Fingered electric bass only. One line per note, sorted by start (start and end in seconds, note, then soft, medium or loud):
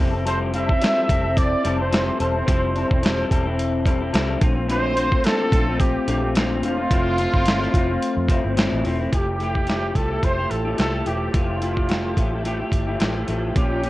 0.00 0.77 F1 medium
1.09 1.54 F1 loud
1.65 2.09 F1 medium
2.20 2.42 E1 loud
2.48 2.82 F1 loud
2.91 3.23 E1 medium
3.31 4.10 E1 medium
4.14 4.36 C2 medium
4.42 5.20 A#1 loud
5.52 5.97 A#1 loud
6.08 6.63 A#1 medium
6.63 6.85 E1 medium
6.91 7.25 F1 loud
7.34 7.66 G1 medium
7.74 7.96 F1 medium
8.17 8.27 F2 loud
8.29 8.41 F1 medium
8.44 8.67 G1 medium
8.72 8.82 A1 medium
8.84 9.07 E1 medium
9.13 9.92 F1 medium
9.95 10.18 C2 medium
10.23 10.45 F1 medium
10.51 10.73 A1 medium
10.79 11.01 C2 medium
11.06 11.29 E1 medium
11.34 12.13 F1 medium
12.17 12.62 A1 medium
12.72 12.94 G1 medium
13.00 13.23 A1 medium
13.28 13.50 A1 medium
13.56 13.90 A#1 medium